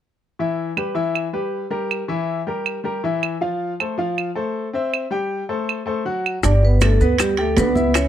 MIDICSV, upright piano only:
0, 0, Header, 1, 2, 480
1, 0, Start_track
1, 0, Key_signature, 1, "major"
1, 0, Tempo, 377596
1, 498, Time_signature, 4, 2, 24, 8
1, 10274, End_track
2, 0, Start_track
2, 0, Title_t, "Upright piano"
2, 0, Program_c, 0, 0
2, 500, Note_on_c, 0, 52, 65
2, 505, Note_on_c, 0, 64, 67
2, 512, Note_on_c, 0, 76, 67
2, 893, Note_off_c, 0, 52, 0
2, 896, Note_off_c, 0, 64, 0
2, 900, Note_off_c, 0, 76, 0
2, 975, Note_on_c, 0, 55, 60
2, 986, Note_on_c, 0, 67, 54
2, 986, Note_on_c, 0, 71, 57
2, 1173, Note_off_c, 0, 55, 0
2, 1179, Note_off_c, 0, 67, 0
2, 1180, Note_off_c, 0, 71, 0
2, 1203, Note_on_c, 0, 52, 73
2, 1208, Note_on_c, 0, 64, 70
2, 1210, Note_on_c, 0, 76, 72
2, 1603, Note_off_c, 0, 52, 0
2, 1606, Note_off_c, 0, 64, 0
2, 1607, Note_off_c, 0, 76, 0
2, 1694, Note_on_c, 0, 55, 65
2, 1697, Note_on_c, 0, 71, 66
2, 1700, Note_on_c, 0, 67, 65
2, 2089, Note_off_c, 0, 55, 0
2, 2091, Note_off_c, 0, 71, 0
2, 2092, Note_off_c, 0, 67, 0
2, 2167, Note_on_c, 0, 55, 69
2, 2170, Note_on_c, 0, 67, 66
2, 2173, Note_on_c, 0, 70, 70
2, 2565, Note_off_c, 0, 55, 0
2, 2566, Note_off_c, 0, 67, 0
2, 2569, Note_off_c, 0, 70, 0
2, 2648, Note_on_c, 0, 52, 76
2, 2656, Note_on_c, 0, 64, 75
2, 2656, Note_on_c, 0, 76, 80
2, 3046, Note_off_c, 0, 52, 0
2, 3050, Note_off_c, 0, 64, 0
2, 3050, Note_off_c, 0, 76, 0
2, 3137, Note_on_c, 0, 55, 62
2, 3138, Note_on_c, 0, 67, 65
2, 3152, Note_on_c, 0, 70, 65
2, 3531, Note_off_c, 0, 55, 0
2, 3531, Note_off_c, 0, 67, 0
2, 3540, Note_off_c, 0, 70, 0
2, 3607, Note_on_c, 0, 55, 62
2, 3614, Note_on_c, 0, 67, 64
2, 3624, Note_on_c, 0, 70, 67
2, 3808, Note_off_c, 0, 55, 0
2, 3812, Note_off_c, 0, 67, 0
2, 3818, Note_off_c, 0, 70, 0
2, 3861, Note_on_c, 0, 52, 70
2, 3863, Note_on_c, 0, 64, 70
2, 3874, Note_on_c, 0, 76, 70
2, 4253, Note_off_c, 0, 52, 0
2, 4254, Note_off_c, 0, 64, 0
2, 4261, Note_off_c, 0, 76, 0
2, 4335, Note_on_c, 0, 53, 69
2, 4342, Note_on_c, 0, 77, 71
2, 4344, Note_on_c, 0, 65, 73
2, 4730, Note_off_c, 0, 53, 0
2, 4734, Note_off_c, 0, 77, 0
2, 4735, Note_off_c, 0, 65, 0
2, 4829, Note_on_c, 0, 57, 55
2, 4833, Note_on_c, 0, 69, 57
2, 4836, Note_on_c, 0, 72, 61
2, 5021, Note_off_c, 0, 57, 0
2, 5024, Note_off_c, 0, 69, 0
2, 5025, Note_off_c, 0, 72, 0
2, 5054, Note_on_c, 0, 53, 76
2, 5066, Note_on_c, 0, 65, 74
2, 5069, Note_on_c, 0, 77, 73
2, 5449, Note_off_c, 0, 53, 0
2, 5457, Note_off_c, 0, 65, 0
2, 5459, Note_off_c, 0, 77, 0
2, 5536, Note_on_c, 0, 69, 70
2, 5539, Note_on_c, 0, 57, 63
2, 5546, Note_on_c, 0, 72, 66
2, 5931, Note_off_c, 0, 69, 0
2, 5932, Note_off_c, 0, 57, 0
2, 5937, Note_off_c, 0, 72, 0
2, 6018, Note_on_c, 0, 60, 69
2, 6029, Note_on_c, 0, 72, 69
2, 6036, Note_on_c, 0, 76, 72
2, 6412, Note_off_c, 0, 60, 0
2, 6419, Note_off_c, 0, 72, 0
2, 6422, Note_off_c, 0, 76, 0
2, 6491, Note_on_c, 0, 55, 81
2, 6497, Note_on_c, 0, 67, 76
2, 6506, Note_on_c, 0, 79, 74
2, 6888, Note_off_c, 0, 55, 0
2, 6891, Note_off_c, 0, 67, 0
2, 6897, Note_off_c, 0, 79, 0
2, 6978, Note_on_c, 0, 57, 62
2, 6980, Note_on_c, 0, 69, 66
2, 6982, Note_on_c, 0, 72, 64
2, 7372, Note_off_c, 0, 57, 0
2, 7373, Note_off_c, 0, 69, 0
2, 7375, Note_off_c, 0, 72, 0
2, 7444, Note_on_c, 0, 57, 69
2, 7457, Note_on_c, 0, 69, 64
2, 7459, Note_on_c, 0, 72, 69
2, 7647, Note_off_c, 0, 57, 0
2, 7655, Note_off_c, 0, 69, 0
2, 7656, Note_off_c, 0, 72, 0
2, 7694, Note_on_c, 0, 54, 70
2, 7700, Note_on_c, 0, 66, 73
2, 7701, Note_on_c, 0, 78, 68
2, 8090, Note_off_c, 0, 54, 0
2, 8093, Note_off_c, 0, 66, 0
2, 8094, Note_off_c, 0, 78, 0
2, 8178, Note_on_c, 0, 55, 70
2, 8180, Note_on_c, 0, 67, 69
2, 8572, Note_off_c, 0, 55, 0
2, 8573, Note_off_c, 0, 67, 0
2, 8661, Note_on_c, 0, 62, 64
2, 8670, Note_on_c, 0, 74, 61
2, 8857, Note_off_c, 0, 62, 0
2, 8863, Note_off_c, 0, 74, 0
2, 8908, Note_on_c, 0, 71, 71
2, 8911, Note_on_c, 0, 59, 71
2, 9298, Note_off_c, 0, 71, 0
2, 9300, Note_off_c, 0, 59, 0
2, 9380, Note_on_c, 0, 67, 70
2, 9386, Note_on_c, 0, 79, 66
2, 9577, Note_off_c, 0, 67, 0
2, 9580, Note_off_c, 0, 79, 0
2, 9611, Note_on_c, 0, 62, 71
2, 9616, Note_on_c, 0, 74, 69
2, 9811, Note_off_c, 0, 62, 0
2, 9814, Note_off_c, 0, 74, 0
2, 9851, Note_on_c, 0, 76, 70
2, 9855, Note_on_c, 0, 64, 70
2, 10247, Note_off_c, 0, 76, 0
2, 10250, Note_off_c, 0, 64, 0
2, 10274, End_track
0, 0, End_of_file